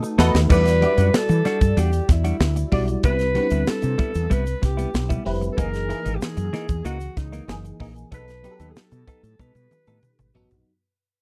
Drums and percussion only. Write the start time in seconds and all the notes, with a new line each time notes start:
0.03 shaker
0.19 snare, shaker
0.35 snare, shaker
0.50 kick, crash, shaker
0.65 snare, closed hi-hat, shaker
0.82 closed hi-hat
0.98 closed hi-hat, shaker
1.14 snare, shaker
1.29 closed hi-hat, shaker
1.45 snare, closed hi-hat
1.61 kick, closed hi-hat, shaker
1.77 closed hi-hat, shaker
1.93 closed hi-hat, shaker
2.09 kick, snare, closed hi-hat, shaker
2.25 closed hi-hat, shaker
2.41 snare, shaker
2.56 closed hi-hat, shaker
2.72 kick, open hi-hat
2.88 closed hi-hat, shaker
3.03 kick, closed hi-hat, shaker
3.19 snare, closed hi-hat, shaker
3.35 closed hi-hat
3.50 closed hi-hat, shaker
3.67 snare, shaker
3.82 closed hi-hat, shaker
3.99 kick, closed hi-hat
4.15 closed hi-hat, shaker
4.31 kick, closed hi-hat, shaker
4.46 closed hi-hat, shaker
4.63 kick, snare, closed hi-hat, shaker
4.79 closed hi-hat, shaker
4.95 snare, shaker
5.10 kick, closed hi-hat, shaker
5.26 open hi-hat
5.42 closed hi-hat, shaker
5.58 kick, closed hi-hat, shaker
5.74 snare, closed hi-hat, shaker
5.90 closed hi-hat
6.06 closed hi-hat, shaker
6.21 snare, shaker
6.37 closed hi-hat, shaker
6.54 snare, closed hi-hat
6.69 kick, closed hi-hat, shaker
6.85 closed hi-hat, shaker
7.00 closed hi-hat, shaker
7.17 kick, snare, closed hi-hat, shaker
7.33 closed hi-hat, shaker
7.49 snare, shaker
7.65 closed hi-hat, shaker
7.80 kick, open hi-hat
7.96 closed hi-hat, shaker
8.12 kick, closed hi-hat, shaker
8.28 snare, closed hi-hat, shaker
8.44 closed hi-hat, shaker
8.60 closed hi-hat, shaker
8.76 snare, shaker
8.91 closed hi-hat, shaker
9.08 kick, closed hi-hat, shaker
9.24 closed hi-hat, shaker
9.39 kick, high tom, shaker
9.55 high tom, shaker
9.71 mid tom, shaker
9.87 mid tom, shaker
10.03 mid tom, shaker
10.19 mid tom, shaker
10.35 floor tom, shaker
10.51 floor tom, shaker